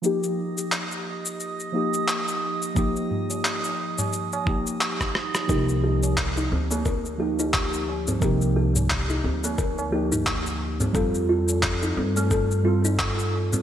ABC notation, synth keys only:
X:1
M:4/4
L:1/8
Q:"Swing 16ths" 1/4=88
K:Fmix
V:1 name="Synth keys"
[F,B,EG]4- [F,B,EG] [F,B,EG]3 | [F,B,EG]4- [F,B,EG] [F,B,EG]3 | [F,B,EG]4- [F,B,EG] [F,B,EG]3 | [F,B,EG]4- [F,B,EG] [F,B,EG]3 |
[G,CFA]4- [G,CFA] [G,CFA]3 |]